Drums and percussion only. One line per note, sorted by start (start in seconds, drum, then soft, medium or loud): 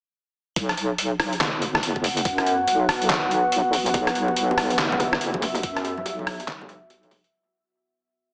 0.56 kick loud
0.56 closed hi-hat medium
0.69 cross-stick soft
0.69 closed hi-hat soft
0.77 closed hi-hat medium
0.98 closed hi-hat medium
1.20 cross-stick medium
1.20 open hi-hat medium
1.33 closed hi-hat medium
1.41 snare loud
1.41 clap loud
1.41 closed hi-hat medium
1.62 closed hi-hat medium
1.75 cross-stick medium
1.75 snare soft
1.83 closed hi-hat medium
1.96 kick medium
2.04 open hi-hat medium
2.17 closed hi-hat medium
2.25 kick loud
2.25 closed hi-hat medium
2.38 cross-stick soft
2.38 closed hi-hat soft
2.46 closed hi-hat medium
2.68 closed hi-hat medium
2.89 cross-stick medium
2.89 open hi-hat medium
3.02 closed hi-hat medium
3.10 snare loud
3.10 clap loud
3.10 closed hi-hat medium
3.31 closed hi-hat medium
3.52 closed hi-hat medium
3.73 open hi-hat medium
3.86 closed hi-hat medium
3.94 kick loud
3.94 closed hi-hat medium
3.94 high bongo medium
4.07 cross-stick medium
4.07 closed hi-hat soft
4.15 closed hi-hat soft
4.28 high bongo medium
4.36 closed hi-hat medium
4.51 high bongo medium
4.58 cross-stick medium
4.58 open hi-hat medium
4.70 closed hi-hat medium
4.79 snare loud
4.79 clap medium
4.79 closed hi-hat medium
4.79 high bongo medium
4.92 high conga medium
4.92 low conga loud
5.00 closed hi-hat medium
5.00 high bongo medium
5.00 low conga medium
5.13 cross-stick medium
5.13 snare soft
5.21 closed hi-hat medium
5.34 kick medium
5.34 high bongo soft
5.34 high conga loud
5.42 open hi-hat medium
5.42 low conga medium
5.55 closed hi-hat medium
5.55 high bongo medium
5.63 kick loud
5.63 closed hi-hat medium
5.77 cross-stick medium
5.77 closed hi-hat soft
5.84 closed hi-hat soft
5.84 high bongo soft
5.97 high conga medium
6.06 closed hi-hat medium
6.06 high bongo medium
6.19 high conga medium
6.27 cross-stick medium
6.27 open hi-hat medium
6.27 high conga medium
6.40 closed hi-hat medium
6.40 high bongo medium
6.48 snare loud
6.48 clap medium
6.48 closed hi-hat medium
6.61 high bongo medium
6.61 low conga medium
6.69 closed hi-hat medium
6.69 low conga medium
6.90 closed hi-hat medium
6.90 high bongo medium
7.03 closed hi-hat soft
7.03 high conga medium
7.11 open hi-hat loud
7.11 high bongo medium
7.11 low conga medium
7.24 closed hi-hat medium